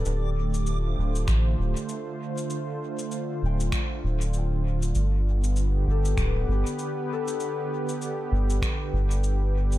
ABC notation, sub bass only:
X:1
M:4/4
L:1/8
Q:"Swing 16ths" 1/4=98
K:Ddor
V:1 name="Sub bass" clef=bass
D,,,3 D,,, A,,, D,,, z2 | z3 D,,, z D,,,3 | G,,,3 G,,, D,,, G,,, z2 | z3 G,,, z G,,,3 |]